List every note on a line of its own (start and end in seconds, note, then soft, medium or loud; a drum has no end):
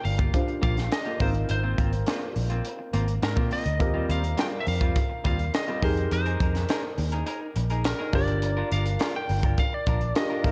0.00 0.31 D4 medium
0.00 0.31 F4 medium
0.00 0.31 G4 medium
0.00 0.32 A#4 medium
0.04 0.29 G1 medium
0.04 0.62 F5 medium
0.04 muted clean electric guitar stroke soft
0.04 open hi-hat medium
0.18 0.35 A#3 soft
0.18 0.34 F4 medium
0.18 0.34 G4 medium
0.18 kick medium
0.18 closed hi-hat soft
0.33 1.20 D4 soft
0.33 1.20 F4 soft
0.33 1.21 G4 soft
0.33 1.21 C5 soft
0.33 kick medium
0.33 closed hi-hat medium
0.48 muted clean electric guitar stroke soft
0.48 closed hi-hat soft
0.62 0.87 A#1 medium
0.62 0.82 A#3 medium
0.62 0.77 F4 medium
0.62 0.75 G4 medium
0.62 0.92 F5 medium
0.62 kick medium
0.62 closed hi-hat medium
0.77 muted clean electric guitar stroke soft
0.77 snare soft
0.77 closed hi-hat soft
0.91 1.22 D#5 loud
0.91 muted clean electric guitar stroke soft
0.91 snare loud
0.91 closed hi-hat medium
1.05 1.18 A#3 medium
1.05 1.20 F4 medium
1.05 1.21 G4 medium
1.05 closed hi-hat soft
1.19 1.45 G#1 loud
1.19 1.35 A#3 medium
1.19 3.47 C4 medium
1.19 1.34 C4 medium
1.19 3.47 D#4 medium
1.19 1.33 F4 medium
1.19 3.48 F4 medium
1.19 3.48 A#4 medium
1.19 1.29 C5 medium
1.19 kick loud
1.19 open hi-hat medium
1.34 muted clean electric guitar stroke soft
1.34 closed hi-hat medium
1.49 1.74 G#1 medium
1.49 2.33 C5 medium
1.49 muted clean electric guitar stroke soft
1.49 closed hi-hat medium
1.63 1.76 A#3 medium
1.63 1.77 C4 medium
1.63 1.78 F4 medium
1.78 2.02 G#1 medium
1.78 1.93 A#3 medium
1.78 1.92 C4 medium
1.78 1.91 F4 medium
1.78 kick medium
1.78 closed hi-hat medium
1.92 muted clean electric guitar stroke soft
1.92 closed hi-hat medium
2.06 2.26 A#3 medium
2.06 2.21 C4 medium
2.06 2.20 F4 medium
2.06 snare loud
2.06 closed hi-hat medium
2.22 muted clean electric guitar stroke soft
2.22 closed hi-hat soft
2.36 2.60 A#1 medium
2.36 muted clean electric guitar stroke soft
2.36 open hi-hat medium
2.50 2.66 A#3 soft
2.50 2.66 C4 medium
2.50 2.65 F4 medium
2.50 closed hi-hat medium
2.65 closed hi-hat medium
2.79 muted clean electric guitar stroke soft
2.93 3.18 G#1 medium
2.93 3.13 A#3 medium
2.93 3.08 C4 medium
2.93 3.07 F4 medium
2.93 closed hi-hat medium
3.08 muted clean electric guitar stroke soft
3.08 closed hi-hat soft
3.22 3.37 G#2 medium
3.22 3.53 A#4 medium
3.22 muted clean electric guitar stroke soft
3.22 snare loud
3.22 closed hi-hat medium
3.36 3.49 A#2 medium
3.36 3.49 A#3 medium
3.36 3.50 C4 medium
3.36 3.51 F4 medium
3.36 kick medium
3.36 closed hi-hat soft
3.51 3.66 A#3 medium
3.51 3.65 C4 medium
3.51 3.64 F4 medium
3.51 4.06 D#5 medium
3.51 open hi-hat medium
3.65 3.81 D2 medium
3.65 muted clean electric guitar stroke soft
3.65 closed hi-hat medium
3.79 4.05 D#2 medium
3.79 5.78 C4 medium
3.79 5.78 F4 medium
3.79 5.79 G4 medium
3.79 5.79 A#4 medium
3.79 muted clean electric guitar stroke soft
3.79 kick medium
3.79 closed hi-hat medium
3.94 4.07 G3 medium
3.94 4.08 C4 medium
3.94 4.09 F4 medium
4.09 4.33 D#2 loud
4.09 4.24 G3 medium
4.09 4.23 C4 medium
4.09 4.22 F4 medium
4.09 4.40 F5 medium
4.09 closed hi-hat medium
4.23 muted clean electric guitar stroke soft
4.23 closed hi-hat medium
4.37 4.57 G3 medium
4.37 4.52 C4 medium
4.37 4.51 F4 medium
4.37 4.46 G5 medium
4.37 snare medium
4.37 closed hi-hat medium
4.52 muted clean electric guitar stroke soft
4.61 4.67 E5 medium
4.66 4.91 F2 medium
4.66 5.25 F5 medium
4.66 muted clean electric guitar stroke soft
4.66 open hi-hat medium
4.81 4.97 G3 soft
4.81 4.97 C4 medium
4.81 4.97 F4 medium
4.81 kick medium
4.81 closed hi-hat medium
4.96 kick medium
4.96 closed hi-hat medium
5.10 muted clean electric guitar stroke soft
5.24 5.49 D#2 medium
5.24 5.44 G3 medium
5.24 5.39 C4 medium
5.24 5.38 F4 medium
5.24 5.54 F5 medium
5.24 kick medium
5.24 closed hi-hat medium
5.39 muted clean electric guitar stroke soft
5.39 closed hi-hat soft
5.54 5.84 D#5 medium
5.54 muted clean electric guitar stroke soft
5.54 snare medium
5.54 closed hi-hat medium
5.68 5.88 G3 medium
5.68 5.82 C4 medium
5.68 5.83 F4 medium
5.68 closed hi-hat soft
5.81 6.07 F2 medium
5.81 8.09 D#4 medium
5.81 5.98 D#4 medium
5.81 8.09 G4 medium
5.81 8.09 G#4 medium
5.81 5.97 G#4 medium
5.81 8.10 A#4 medium
5.81 5.96 A#4 medium
5.81 6.12 C5 medium
5.81 kick medium
5.81 open hi-hat medium
5.97 muted clean electric guitar stroke soft
5.97 closed hi-hat medium
6.11 6.36 F2 medium
6.11 6.95 C5 medium
6.11 muted clean electric guitar stroke soft
6.11 closed hi-hat medium
6.26 6.39 D#4 medium
6.26 6.40 G#4 medium
6.26 6.41 A#4 medium
6.26 closed hi-hat soft
6.40 6.64 F2 medium
6.40 6.56 D#4 medium
6.40 6.55 G#4 medium
6.40 6.54 A#4 medium
6.40 kick medium
6.40 closed hi-hat medium
6.55 muted clean electric guitar stroke soft
6.55 snare soft
6.55 closed hi-hat medium
6.69 6.89 D#4 medium
6.69 6.83 G#4 medium
6.69 6.82 A#4 medium
6.69 snare loud
6.69 closed hi-hat medium
6.83 muted clean electric guitar stroke soft
6.98 7.22 D#2 medium
6.98 muted clean electric guitar stroke soft
6.98 open hi-hat medium
7.12 7.25 D#4 soft
7.12 7.26 G#4 medium
7.12 7.26 A#4 medium
7.12 closed hi-hat medium
7.26 7.46 D#4 medium
7.26 7.41 G#4 medium
7.26 7.40 A#4 loud
7.26 closed hi-hat medium
7.41 muted clean electric guitar stroke soft
7.56 7.92 A#1 medium
7.56 muted clean electric guitar stroke soft
7.56 closed hi-hat medium
7.70 7.84 D#4 soft
7.70 7.85 G#4 medium
7.70 7.85 A#4 medium
7.70 closed hi-hat soft
7.84 8.15 A#4 medium
7.84 snare loud
7.84 closed hi-hat medium
7.99 8.13 D#4 medium
7.99 8.14 G#4 medium
7.99 8.14 A#4 medium
8.13 8.62 G1 loud
8.13 10.11 D4 medium
8.13 8.29 D4 medium
8.13 10.12 F4 medium
8.13 8.28 F4 medium
8.13 10.12 G4 medium
8.13 10.12 A#4 medium
8.13 8.27 A#4 medium
8.13 8.68 D5 medium
8.13 kick medium
8.13 open hi-hat medium
8.28 muted clean electric guitar stroke medium
8.28 closed hi-hat medium
8.42 muted clean electric guitar stroke soft
8.42 closed hi-hat medium
8.57 8.70 D4 medium
8.57 8.71 F4 medium
8.57 8.72 A#4 medium
8.71 8.96 G1 medium
8.71 8.87 D4 medium
8.71 8.86 F4 medium
8.71 8.85 A#4 medium
8.71 9.16 F5 medium
8.71 closed hi-hat medium
8.85 muted clean electric guitar stroke soft
8.85 closed hi-hat medium
8.99 9.19 D4 medium
8.99 9.15 F4 medium
8.99 9.14 A#4 medium
8.99 snare loud
8.99 closed hi-hat medium
9.14 9.60 G5 loud
9.14 muted clean electric guitar stroke soft
9.14 closed hi-hat soft
9.29 9.53 G1 medium
9.29 muted clean electric guitar stroke soft
9.29 open hi-hat medium
9.43 9.60 D4 soft
9.43 9.59 F4 soft
9.43 9.59 A#4 medium
9.43 kick medium
9.43 closed hi-hat medium
9.57 9.74 F5 loud
9.57 kick medium
9.57 closed hi-hat medium
9.73 10.16 D5 loud
9.73 muted clean electric guitar stroke soft
9.86 10.11 A#1 medium
9.86 10.06 D4 medium
9.86 10.02 F4 medium
9.86 10.01 A#4 medium
9.86 kick medium
9.86 closed hi-hat medium
10.01 muted clean electric guitar stroke soft
10.01 closed hi-hat soft
10.15 10.44 D4 soft
10.15 10.43 F4 soft
10.15 10.44 G4 soft
10.15 10.44 A#4 medium
10.15 10.52 D#5 medium
10.15 muted clean electric guitar stroke soft
10.15 snare loud
10.15 closed hi-hat medium
10.30 10.44 D4 medium
10.30 10.44 F4 medium
10.30 10.45 A#4 medium
10.43 10.52 G#1 loud
10.43 10.50 A#3 medium
10.43 10.52 C4 medium
10.43 10.52 D#4 medium
10.43 10.52 F4 medium
10.43 10.52 A#4 medium
10.43 kick medium
10.43 open hi-hat medium